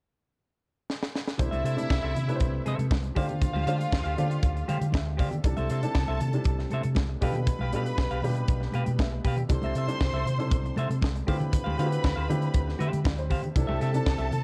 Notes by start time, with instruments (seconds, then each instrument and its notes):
0.90 snare
1.03 snare
1.15 snare
1.27 snare
1.38 fingered electric bass C2, grand piano C3 A3 D4 E4 C5, string section E4 E5, muted clean electric guitar stroke, kick, closed hi-hat, muted conga, low conga
1.51 fingered electric bass C2, clean electric guitar A4 C5 E5, closed hi-hat, high conga
1.64 fingered electric bass C3, clean electric guitar A4 C5 E5, closed hi-hat
1.77 grand piano C3 A3 D4 E4 A4, closed hi-hat
1.90 fingered electric bass C2, muted clean electric guitar stroke, kick, snare
2.03 fingered electric bass C2, clean electric guitar A4 C5 E5
2.15 fingered electric bass C3, closed hi-hat, low conga
2.28 grand piano C3 A3 D4 E4 B4, muted clean electric guitar stroke, closed hi-hat
2.36 grand piano C5
2.40 fingered electric bass C2, kick, closed hi-hat, muted conga
2.53 muted clean electric guitar stroke, muted conga
2.66 fingered electric bass C3, clean electric guitar A4 C5 E5, closed hi-hat, high conga
2.79 fingered electric bass C3, muted clean electric guitar stroke, closed hi-hat, high conga
2.91 fingered electric bass C2, kick, snare, muted conga, high conga
3.03 muted clean electric guitar stroke, closed hi-hat, muted conga
3.15 grand piano D3 A3 D4 F4 G4 C5, fingered electric bass D3, string section F4 F5, clean electric guitar G4 C5 F5, kick, open hi-hat
3.29 muted clean electric guitar stroke, closed hi-hat, low conga
3.41 muted clean electric guitar stroke, kick, closed hi-hat, muted conga, low conga
3.53 fingered electric bass D2, clean electric guitar G4 C5 F5, muted conga, high conga
3.66 fingered electric bass D3, grand piano D3 A3 D4 F4 G4 C5, clean electric guitar G4 C5 F5, closed hi-hat
3.79 muted clean electric guitar stroke, closed hi-hat
3.91 fingered electric bass D2, muted clean electric guitar stroke, kick, snare, muted conga
4.04 fingered electric bass D2, clean electric guitar G4 C5 F5, closed hi-hat
4.17 grand piano D3 A3 D4 F4 G4 C5, fingered electric bass D3, muted clean electric guitar stroke, closed hi-hat, low conga
4.30 muted clean electric guitar stroke, closed hi-hat
4.43 fingered electric bass D2, kick, closed hi-hat
4.55 muted clean electric guitar stroke, closed hi-hat
4.68 fingered electric bass D3, clean electric guitar G4 C5 F5, grand piano G5, closed hi-hat, high conga
4.80 fingered electric bass D3, muted clean electric guitar stroke, closed hi-hat, high conga
4.92 fingered electric bass D2, grand piano E5, kick, snare, muted conga, high conga
5.05 muted clean electric guitar stroke
5.17 fingered electric bass D3, clean electric guitar G4 C5 F5, grand piano D5, kick, open hi-hat
5.31 muted clean electric guitar stroke, closed hi-hat, low conga
5.44 fingered electric bass C2, grand piano C3 G3 D4 E4 A4, string section A4 A5, muted clean electric guitar stroke, kick, closed hi-hat, muted conga, low conga
5.57 fingered electric bass C2, clean electric guitar A4 C5 E5, closed hi-hat, high conga
5.70 fingered electric bass C3, clean electric guitar A4 C5 E5, closed hi-hat
5.83 grand piano C3 G3 D4 E4 A4, muted clean electric guitar stroke, closed hi-hat
5.95 fingered electric bass C2, muted clean electric guitar stroke, kick, snare, muted conga
6.07 fingered electric bass C2, clean electric guitar A4 C5 E5, muted conga
6.20 fingered electric bass C3, muted clean electric guitar stroke, closed hi-hat, low conga
6.33 grand piano C3 G3 D4 E4 A4, muted clean electric guitar stroke, closed hi-hat
6.44 fingered electric bass C2, kick, closed hi-hat, muted conga
6.59 muted clean electric guitar stroke, snare
6.70 fingered electric bass C3, clean electric guitar A4 C5 E5, closed hi-hat, high conga
6.83 fingered electric bass C3, muted clean electric guitar stroke, closed hi-hat, high conga
6.95 fingered electric bass C2, kick, snare, muted conga, high conga
7.08 muted clean electric guitar stroke, muted conga
7.21 grand piano B2 G3 D4 F4 A4, fingered electric bass B2, clean electric guitar G4 B4 F5, string section B4 B5, kick, open hi-hat
7.33 muted clean electric guitar stroke, closed hi-hat, low conga
7.46 muted clean electric guitar stroke, kick, closed hi-hat, muted conga, low conga
7.59 fingered electric bass B1, clean electric guitar G4 B4 F5, muted conga, high conga
7.72 grand piano B2 G3 D4 F4 A4, fingered electric bass B2, clean electric guitar G4 B4 F5, closed hi-hat
7.86 muted clean electric guitar stroke, closed hi-hat
7.97 fingered electric bass B1, muted clean electric guitar stroke, kick, snare, muted conga
8.11 fingered electric bass B1, clean electric guitar G4 B4 F5, closed hi-hat
8.22 grand piano A#2 G3 D4 F4 G4, fingered electric bass B2, open hi-hat, low conga
8.29 grand piano B2
8.35 muted clean electric guitar stroke, closed hi-hat
8.48 fingered electric bass B1, kick, closed hi-hat
8.60 muted clean electric guitar stroke, snare, muted conga
8.72 fingered electric bass B2, clean electric guitar G4 B4 F5, grand piano B4, closed hi-hat, high conga
8.86 fingered electric bass B2, muted clean electric guitar stroke, closed hi-hat, high conga
8.99 fingered electric bass B1, grand piano E5, kick, snare, muted conga, high conga
9.12 muted clean electric guitar stroke, muted conga
9.24 fingered electric bass B2, clean electric guitar G4 B4 F5, kick, open hi-hat
9.37 muted clean electric guitar stroke, closed hi-hat, low conga
9.49 fingered electric bass C2, grand piano C3 G3 D4 E4 A4, string section C5 C6, muted clean electric guitar stroke, kick, closed hi-hat, muted conga, low conga
9.62 fingered electric bass C2, clean electric guitar A4 C5 E5, closed hi-hat, muted conga, high conga
9.75 fingered electric bass C3, clean electric guitar A4 C5 E5, closed hi-hat
9.88 grand piano C3 G3 D4 E4 A4, closed hi-hat
10.01 fingered electric bass C2, muted clean electric guitar stroke, kick, snare, muted conga
10.12 fingered electric bass C2, clean electric guitar A4 C5 E5, muted conga
10.26 fingered electric bass C3, muted clean electric guitar stroke, closed hi-hat, low conga
10.38 grand piano C3 G3 D4 E4 A4, muted clean electric guitar stroke, closed hi-hat
10.50 fingered electric bass C2, kick, closed hi-hat, muted conga
10.63 muted clean electric guitar stroke, closed hi-hat, muted conga
10.76 fingered electric bass C3, clean electric guitar A4 C5 E5, closed hi-hat, high conga
10.89 fingered electric bass C3, muted clean electric guitar stroke, closed hi-hat, high conga
11.01 fingered electric bass C2, kick, snare, muted conga, high conga
11.16 muted clean electric guitar stroke, closed hi-hat
11.27 grand piano D3 A3 C4 E4 F4 G4, fingered electric bass D3, clean electric guitar G4 C5 F5, string section B4 B5, kick, open hi-hat
11.39 muted clean electric guitar stroke, closed hi-hat, low conga
11.51 muted clean electric guitar stroke, kick, closed hi-hat, muted conga, low conga
11.64 fingered electric bass D2, clean electric guitar G4 C5 F5, muted conga, high conga
11.78 grand piano D3 A3 C4 E4 F4 F#4, fingered electric bass D3, clean electric guitar G4 C5 F5, closed hi-hat
11.86 grand piano G4
11.91 muted clean electric guitar stroke, closed hi-hat
12.04 fingered electric bass D2, muted clean electric guitar stroke, kick, snare, muted conga
12.16 fingered electric bass D2, clean electric guitar G4 C5 F5
12.29 grand piano D3 A3 C4 E4 F4 G4, fingered electric bass D3, muted clean electric guitar stroke, closed hi-hat, low conga
12.41 muted clean electric guitar stroke, closed hi-hat
12.54 fingered electric bass D2, kick, closed hi-hat
12.68 muted clean electric guitar stroke, snare
12.79 fingered electric bass D3, clean electric guitar G4 C5 F5, grand piano E5, closed hi-hat, high conga
12.92 fingered electric bass D3, muted clean electric guitar stroke, closed hi-hat, high conga
13.04 fingered electric bass D2, grand piano D5, kick, snare, high conga
13.17 grand piano C5, muted clean electric guitar stroke, closed hi-hat, muted conga
13.30 fingered electric bass D3, clean electric guitar G4 C5 F5, kick, open hi-hat
13.43 muted clean electric guitar stroke, closed hi-hat, low conga
13.55 fingered electric bass C2, grand piano C3 C4 D4 E4 A4, string section A4 A5, muted clean electric guitar stroke, kick, closed hi-hat, muted conga, low conga
13.67 fingered electric bass C2, clean electric guitar G4 A4 E5, muted conga, high conga
13.81 fingered electric bass C3, clean electric guitar G4 A4 E5, closed hi-hat
13.94 grand piano C3 C4 D4 E4 A4, muted clean electric guitar stroke, closed hi-hat
14.06 fingered electric bass C2, muted clean electric guitar stroke, kick, snare
14.18 fingered electric bass C2, clean electric guitar G4 A4 E5, closed hi-hat, muted conga
14.31 fingered electric bass C3, muted clean electric guitar stroke, closed hi-hat, low conga